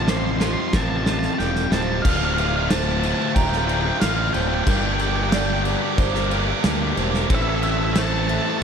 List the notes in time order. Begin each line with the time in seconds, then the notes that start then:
Already playing: A1 F2 G3 F4 G4 A4 C5
0.03 A5
0.07 F2 C3 F3 G3 C5 C6, snare
0.17 C6
0.25 C6
0.31 C6
0.38 F2 C3 F3 F4 C6, snare
0.46 C6
0.53 C6
0.60 C6
0.68 C6
0.72 A1 F2 C3 F3 C4 A#4 A5, kick, snare
0.81 A5
0.90 A5
0.97 A5
1.05 F2 C3 F3 F4 A4 A5, snare
1.12 A5
1.19 A5, snare
1.26 A5
1.34 F2 A5
1.39 E1 C3 F3 G3 G5, snare
1.56 snare
1.71 D1 F2 C3 F3 C4 C5 A5, snare
2.02 D1 D2 A2 D3 F4 A4 C5 D5 F5, kick, crash
2.06 A3 C4 F4
2.11 F5
2.17 F4 F5
2.21 D3 A3 C4 F5
2.34 D3 F5
2.38 A3 C4 F4 F5, crash
2.48 F5
2.55 D3 A3 C4 F4 F5
2.63 F5
2.69 D2 A2 D3 A3 C4 C5 A5, snare, crash
2.73 F4 A5
2.84 A5
2.92 A5
3.00 D3 A3 C4 A5, crash
3.04 F4 A5
3.15 F4 A5
3.19 D3 A3 C4 A5, muted distorted electric guitar stroke
3.30 A5
3.35 D1 G5 A#5, kick, crash
3.43 G5
3.50 D3 A3 C4 F4 G5, snare
3.58 G5
3.66 D3 A3 C4 F4 A4 G5, crash
3.74 G5
3.82 C4 F4 G5, muted distorted electric guitar stroke
3.86 D3 A3 G5
3.99 A1 D2 A2 D3 A3 C4 F4 F5, snare, crash
4.17 D3 A3 C4 F4
4.32 D1 D3 A3 C4 F4 C5 G5, crash
4.41 G5
4.48 A3 C4 F4 G5
4.52 D3 G5
4.64 G1 G2 D3 A#4 G5 A#5, kick, crash
4.68 G3 A#3 D4 G4 A#4 G5
4.78 G5
4.82 G3 A#3 D4 G4 G5
4.93 G5
4.99 G3 A#3 D4 G4 G5, crash
5.08 G5
5.16 G3 A#3 D4 G4 G5
5.24 G5
5.30 G2 D3 D5 G5, snare, crash
5.34 G3 A#3 D4 G4
5.39 G5
5.46 G5
5.53 G5
5.65 G3 A#3 D4 G4, crash
5.82 G3 A#3 D4 G4, muted distorted electric guitar stroke
5.98 G1 C5, kick, crash
6.14 G3 A#3 D4 G4, snare
6.30 G3 A#3 D4 G4 A#4, crash
6.47 G3 A#3 D4 G4, muted distorted electric guitar stroke
6.63 D2 G2 D3 G3 A#3 D4 G4, snare, crash
6.81 G3 A#3 D4 G4
6.95 E1 G3 A#3 D4 G4 C5, crash
7.11 G3 A#3 D4 G4, snare
7.28 A1 A2 E3 A3 C4 E4 A4 C5 E5 C6, kick, crash
7.34 E5
7.42 E4 A4 E5
7.47 A3 C4 E5
7.56 E5
7.61 A3 C4 E4 A4 E5, crash
7.71 E5
7.78 E4 A4 E5
7.83 A3 C4 E5
7.93 A2 E3 A3 C4 C5 E5, snare, crash
7.98 E4 A4 A5
8.05 A5
8.14 A5
8.19 A5
8.27 A3 C4 E4 A4 A5, crash
8.35 A5
8.42 E4 A4 A5, muted distorted electric guitar stroke
8.46 A3 C4 A5
8.58 A5